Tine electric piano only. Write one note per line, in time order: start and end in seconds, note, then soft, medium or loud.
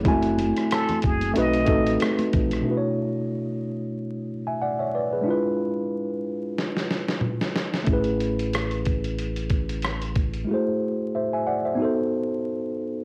0.04 0.12 G#3 medium
0.04 1.05 C4 medium
0.04 1.05 E4 medium
0.04 1.06 F#4 medium
0.08 1.07 A3 medium
0.08 1.06 G#5 medium
1.33 1.61 A3 medium
1.33 1.62 C4 medium
1.33 1.62 D#4 medium
1.33 1.63 F#4 medium
1.38 1.63 B4 medium
1.65 2.42 A3 medium
1.65 2.43 C4 medium
1.65 2.44 D#4 medium
1.65 2.44 F#4 medium
1.69 2.45 A4 medium
2.61 5.21 B2 medium
2.61 5.21 A3 medium
2.61 5.22 D4 soft
2.67 5.23 E4 medium
2.67 5.24 F#4 soft
2.67 2.76 B4 soft
2.77 4.31 C#5 medium
4.47 4.61 E5 soft
4.47 4.61 G#5 medium
4.62 4.79 D5 medium
4.62 4.79 F#5 medium
4.79 4.94 C#5 soft
4.79 4.93 E5 medium
4.95 5.11 B4 soft
4.95 5.12 D5 medium
5.13 5.44 G#4 soft
5.13 5.29 B4 medium
5.21 7.81 G#3 medium
5.21 7.82 D4 medium
5.26 7.83 E4 medium
5.26 7.84 F4 medium
5.31 7.86 B4 medium
7.84 10.43 A3 medium
7.84 10.44 C#4 medium
7.89 10.45 E4 medium
7.89 10.46 G#4 medium
7.93 10.47 B4 medium
10.44 10.54 G#3 soft
10.44 11.76 E4 medium
10.49 11.78 A3 medium
10.49 11.77 F#4 medium
10.49 11.78 G#4 medium
10.54 11.15 C5 medium
11.15 11.32 C5 soft
11.15 11.32 E5 medium
11.33 11.47 E5 soft
11.33 11.46 G#5 medium
11.47 11.64 D5 soft
11.47 11.64 F#5 medium
11.65 11.83 C5 soft
11.65 11.96 E5 soft
11.75 13.04 B3 medium
11.75 13.04 D#4 medium
11.80 13.04 F#4 medium
11.80 13.04 A4 medium
11.84 13.04 C5 medium